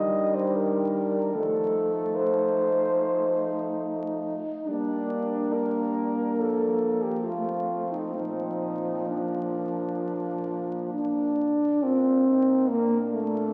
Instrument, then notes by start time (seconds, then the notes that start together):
french horn
Already playing: D#3 G3 D4 D#5
0.35 C5
0.55 A#4
1.34 F3 A3 D#4 A4
2.16 C5
4.66 G3 A#3 D4
5.53 A#4
6.40 F3 A4
7.04 G4
7.24 A3 C4 F4
7.92 D#4
8.15 A#2 F3 D#4
9.07 A#3 D4
10.94 D4
11.82 A#2 C4 F4 A#4
12.28 D#4
12.69 A#3 D4
13.12 A3